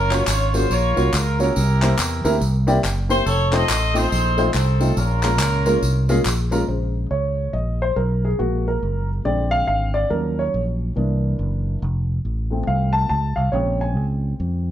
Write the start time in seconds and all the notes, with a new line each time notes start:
Already playing: F#1 C#4 F4 A#4
0.11 A#3 C#4 F4 F#4 C#5, clap, tambourine
0.27 G#1 C#5, clap, tambourine
0.54 A#3 C#4 F4 F#4 G#4 C5, tambourine
0.70 A#1 F4 A#4 C#5, tambourine
0.96 C2 A#3 C#4 F4 F#4 C#5, tambourine
1.13 C#2 A#4, clap, tambourine
1.39 A#3 C#4 E4 F4 F#4 G4 A#4 C#5, tambourine
1.56 C2 C3, tambourine
1.82 A#3 C4 E4 G4 C5, clap, tambourine
1.99 E2, clap, tambourine
2.24 D2 A#3 C4 E4 G4 A#4, tambourine
2.41 C2, tambourine
2.67 A#3 C4 E4 G4 D5, tambourine
2.83 F#1, clap, tambourine
3.09 A#3 C4 E4 G4 C5, tambourine
3.26 F1 A4 C#5, tambourine
3.52 A3 C4 D#4 F4 A4 C5 D#5, clap, tambourine
3.69 A1, clap, tambourine
3.94 A3 C4 D#4 F4 A4 C5 D#5, tambourine
4.12 A#1, tambourine
4.38 A3 C4 D#4 F4 C5, tambourine
4.54 C2 C4 D#4 A4, clap, tambourine
4.80 A3 C4 D#4 F4 A4, tambourine
4.97 A#1 A#2 C#4 F4 A#4, tambourine
5.23 G#3 A#3 C#4 F4 A#4, clap, tambourine
5.39 C#2, clap, tambourine
5.66 G#3 A#3 C#4 F4 A#4, tambourine
5.82 C2, tambourine
6.09 G#3 A#3 C#4 F4 G#4, tambourine
6.25 A#1, clap, tambourine
6.51 G#3 A#3 C#4 F4 A#4, tambourine
6.67 A#1 C#3 G#3 C5
7.11 C#2 C#5
7.53 A#1 D#5
7.82 C5
7.96 B1 A#4
8.25 G#4
8.38 A#1 F3 G#3 A#3 F#4
8.68 A#4
8.83 F#1
9.24 A#1 D3 G#3 C4 D5
9.51 F5
9.67 G#1 F5
9.94 D5
10.10 D#2 F3 F#3 C#4 A#4
10.39 C#5
10.54 A#1
10.96 C2 E3 A#3 D4
11.39 F#1
11.82 F1
12.25 A1
12.50 F3 A3 C4
12.67 C2 F5
12.93 A5
13.09 C#2 A5
13.36 C2 F5
13.52 A#1 C#3 G#3 C4 C#5
13.81 G#5
13.96 C#2
14.40 F2